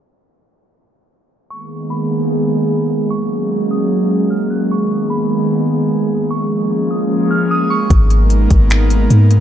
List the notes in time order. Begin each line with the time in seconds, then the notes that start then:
1.50 D#3 G#3 A#3 B3 G#4 C#6
1.90 B5
3.10 F#3 A#3 C#4 G#4 C#6
3.71 D#6
4.30 F6
4.50 F#6
4.70 D#3 B3 C#6
5.10 B5
6.30 F3 A#3 C#4 C#6
6.91 D#6
7.31 F6
7.51 D#6
7.70 C#6
7.90 G#1 G#3 A#3 B3 D#4 A#4, kick, closed hi-hat
8.10 closed hi-hat
8.30 closed hi-hat
8.50 G#1, kick, closed hi-hat
8.70 finger snap, closed hi-hat
8.90 closed hi-hat
9.10 G#2, closed hi-hat
9.31 closed hi-hat